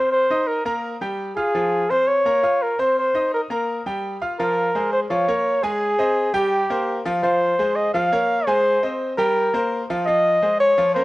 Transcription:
Already playing: grand piano C4 C5 C6, flugelhorn C5
0.12 flugelhorn C5
0.30 grand piano D#4 D#5 D#6
0.47 flugelhorn A#4
0.65 grand piano A#3 A#4 A#5, flugelhorn A#4
1.01 grand piano G3 G4 G5
1.36 grand piano F4 F5 F6, flugelhorn G#4
1.55 grand piano F3 F4 F5
1.90 grand piano C4 C5 C6, flugelhorn C5
2.08 flugelhorn C#5
2.26 grand piano A#3 A#4 A#5
2.43 grand piano F4 F5 F6
2.62 flugelhorn A#4
2.79 grand piano C4 C5 C6, flugelhorn C5
2.99 flugelhorn C5
3.15 grand piano D#4 D#5 D#6
3.34 flugelhorn A#4
3.50 grand piano A#3 A#4 A#5, flugelhorn A#4
3.86 grand piano G3 G4 G5
4.21 grand piano F4 F5 F6
4.39 grand piano F3 F4 F5, flugelhorn A#4
4.75 grand piano G#3 G#4 C5
4.93 flugelhorn C5
5.10 grand piano F3 F4 F5, flugelhorn C#5
5.28 grand piano A#3 A#4 C#5
5.63 grand piano G#3 G#4 G#5, flugelhorn G#4
5.98 grand piano C4 C5 D#5
6.34 grand piano G3 G4 G5, flugelhorn G4
6.70 grand piano A#3 A#4 C5
7.05 grand piano F3 F4 F5
7.23 grand piano F3 F4 F5, flugelhorn C5
7.59 grand piano G#3 G#4 C5
7.76 flugelhorn D#5
7.94 grand piano F3 F4 F5, flugelhorn F5
8.12 grand piano A#3 A#4 C#5
8.46 grand piano G#3 G#4 G#5, flugelhorn C5
8.83 grand piano C4 C5 D#5
9.18 grand piano G3 G4 G5, flugelhorn A#4
9.54 grand piano A#3 A#4 C5
9.90 grand piano F3 F4 F5
10.05 grand piano F3 F4 F5, flugelhorn D#5
10.42 grand piano G#3 G#4 C5
10.60 flugelhorn C#5
10.78 grand piano F3 F4 F5
10.95 grand piano A#3 C#4 A#4, flugelhorn C5

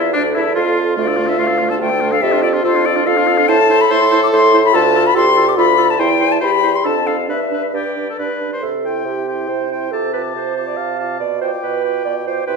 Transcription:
Already playing: bassoon E2, clarinet E4, french horn F4, flute E5
0.13 bassoon D2, oboe D4, clarinet D4, french horn A4, flute D5
0.34 bassoon E2, oboe E4, clarinet E4, flute E5
0.55 bassoon F2, oboe F4, clarinet F4, flute F5
0.96 bassoon D2, clarinet A3, oboe F4, french horn F4, flute D5
1.08 clarinet D4, oboe A4
1.16 clarinet A3, oboe F4
1.27 clarinet D4, oboe A4, flute E5
1.38 bassoon D2, clarinet A3, oboe F4, flute F5
1.47 clarinet D4, oboe A4
1.58 clarinet A3, oboe F4
1.69 clarinet D4, oboe A4, flute A5
1.80 bassoon D2, clarinet A3, oboe F4, french horn A4, flute G5
1.90 clarinet D4, oboe A4
2.01 clarinet A3, oboe F4
2.12 clarinet D4, oboe A4, flute F5
2.22 bassoon F2, clarinet F4, french horn G4, oboe A4, flute E5
2.32 clarinet D4, oboe F4
2.42 clarinet F4, oboe A4, flute D5
2.53 clarinet D4, oboe F4
2.62 bassoon F2, french horn F4, clarinet F4, oboe A4, flute C5
2.74 clarinet D4, oboe F4
2.85 clarinet F4, oboe A4, flute D5
2.96 clarinet D4, oboe F4
3.05 bassoon F2, clarinet F4, french horn A4, oboe A4, flute F5
3.16 clarinet D4, oboe F4
3.26 clarinet F4, oboe A4
3.38 clarinet D4, oboe F4
3.48 bassoon A2, clarinet E4, oboe C5, flute A5
3.69 clarinet E4, oboe C5
3.81 flute B5
3.90 bassoon A2, clarinet E4, oboe C5, flute C6
4.11 clarinet E4, oboe C5
4.23 flute D6
4.32 bassoon A2, clarinet E4, oboe C5, flute C6
4.53 clarinet E4, oboe C5
4.65 flute B5
4.73 bassoon D2, clarinet F4, french horn F4, oboe A4, flute A5
4.95 clarinet F4, oboe A4
5.06 flute B5
5.15 bassoon D2, clarinet F4, french horn G4, oboe A4, flute C6
5.36 clarinet F4, oboe A4
5.48 flute D6
5.57 bassoon D2, french horn F4, clarinet F4, oboe A4, flute B5
5.78 clarinet F4, oboe A4
5.90 flute A5
5.99 bassoon E2, french horn E4, clarinet E4, oboe C5, flute G5
6.20 clarinet E4, oboe C5
6.32 flute A5
6.41 bassoon E2, clarinet E4, french horn G4, oboe C5, flute B5
6.63 clarinet E4, oboe C5
6.75 flute C6
6.84 bassoon F2, clarinet D4, oboe A4, french horn A4, flute A5
7.06 clarinet D4, oboe A4, flute F5
7.28 bassoon G2, clarinet D4, french horn B4, oboe B4, flute E5
7.51 clarinet D4, oboe B4
7.73 bassoon G2, clarinet D4, oboe G4, flute D5
7.95 clarinet D4
8.10 oboe A4
8.18 bassoon G2, clarinet D4, oboe B4
8.40 clarinet D4
8.53 oboe C5
8.61 bassoon C3, clarinet A4
8.84 french horn E4, oboe G5, flute C6
9.05 bassoon C3, clarinet G4
9.28 french horn E4, oboe G5, flute C6
9.48 bassoon C3, clarinet C5
9.71 french horn E4, oboe G5, flute C6
9.91 bassoon C3, french horn F4, clarinet A4, oboe A5, flute D6
10.13 french horn F4, clarinet B4, oboe A5, flute D6
10.35 bassoon C3, clarinet C5
10.56 french horn F4, oboe A5, flute D6
10.67 clarinet D5
10.76 bassoon C3, clarinet F5
10.99 french horn F4, oboe A5, flute D6
11.19 bassoon B2, clarinet D5
11.41 french horn F4, clarinet C5, oboe G5, flute D6
11.62 bassoon B2, clarinet B4
11.84 french horn F4, oboe G5, flute D6
12.05 bassoon B2, clarinet D5
12.26 french horn F4, clarinet C5, oboe G5, flute D6
12.46 bassoon C3, french horn E4, clarinet B4, oboe G5, flute C6

